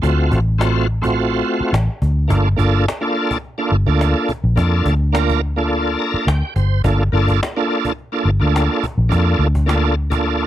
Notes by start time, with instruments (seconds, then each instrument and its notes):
0.02 fingered electric bass D2, tonewheel organ A3 C4 F4 F#4, cajon bass
0.32 fingered electric bass A1, cajon bass
0.48 cajon slap
0.58 tonewheel organ A3 C4 F4 F#4, cajon slap
0.88 cajon slap
1.02 tonewheel organ A3 C4 F4 F#4, cajon bass
1.46 cajon slap
1.60 muted fingered electric bass stroke, cajon slap
1.73 fingered electric bass A1, cajon slap
2.02 fingered electric bass D2, cajon bass
2.28 fingered electric bass G1, tonewheel organ A#3 D4 F4 A4, cajon bass
2.46 cajon slap
2.57 fingered electric bass G1, tonewheel organ A#3 D4 F4 A4, cajon bass
2.74 cajon slap
2.88 cajon slap
3.01 tonewheel organ A#3 D4 F4 A4, cajon slap
3.16 cajon slap
3.31 cajon bass, cajon slap
3.44 cajon slap
3.58 tonewheel organ A#3 D4 F4 A4
3.72 fingered electric bass G1, cajon slap
3.86 fingered electric bass D2, tonewheel organ A#3 D4 F4 A4
4.01 cajon slap
4.29 cajon bass
4.44 fingered electric bass A#1, cajon slap
4.56 fingered electric bass F2, tonewheel organ A#3 D4 F4 A4, cajon bass
4.86 fingered electric bass D2, cajon bass
5.01 cajon slap
5.13 tonewheel organ A#3 D4 F4 A#4, cajon slap
5.29 cajon bass
5.56 tonewheel organ A#3 D4 F4 A4
5.72 cajon slap
5.87 cajon slap
5.99 tonewheel organ A#5, cajon slap
6.14 muted fingered electric bass stroke
6.27 fingered electric bass D2, tonewheel organ G5, cajon slap
6.56 fingered electric bass G1, tonewheel organ C5, cajon bass
6.84 fingered electric bass G1, tonewheel organ A#3 D4 F4 A4, cajon bass
7.12 fingered electric bass G1, tonewheel organ A#3 D4 F4 A4, cajon slap
7.28 cajon bass
7.43 cajon slap
7.56 tonewheel organ A#3 D4 F4 A4
7.85 cajon bass, cajon slap
7.98 cajon slap
8.12 tonewheel organ A#3 D4 F4 A4, cajon slap
8.25 fingered electric bass G1, cajon slap
8.40 fingered electric bass D2, tonewheel organ A#3 D4 F4 A4
8.56 cajon slap
8.72 cajon slap
8.83 cajon bass
8.98 fingered electric bass A#1
9.09 fingered electric bass F2, tonewheel organ A#3 D4 F4 A4, cajon bass
9.28 cajon slap
9.39 fingered electric bass D2, cajon slap
9.55 cajon bass
9.66 tonewheel organ A#3 D4 F4 A4, cajon slap
9.84 cajon slap
10.10 tonewheel organ A#3 D4 F4 A4, cajon bass
10.25 cajon slap